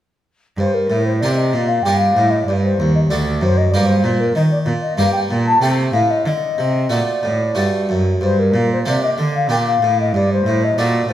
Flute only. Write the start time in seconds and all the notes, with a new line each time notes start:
0.59 C5
0.74 A#4
1.06 C5
1.19 D5
1.35 D#5
1.68 F5
1.83 G5
1.97 F5
2.30 D#5
2.46 D5
2.63 C5
2.95 D#5
3.09 D5
3.42 C5
3.57 D#5
3.71 D5
3.86 C5
4.20 A#4
4.35 D#5
4.51 D5
4.82 D#5
4.97 F5
5.12 G5
5.47 A5
5.61 G5
5.92 F5
6.10 D#5
6.26 D#5
6.91 D5
8.23 C5
8.39 A#4
8.73 C5
8.88 D5
9.03 D#5
9.36 F5
9.50 G5
9.67 F5
10.00 D#5
10.15 D5
10.33 C5
10.64 D#5
10.78 D5
11.09 C5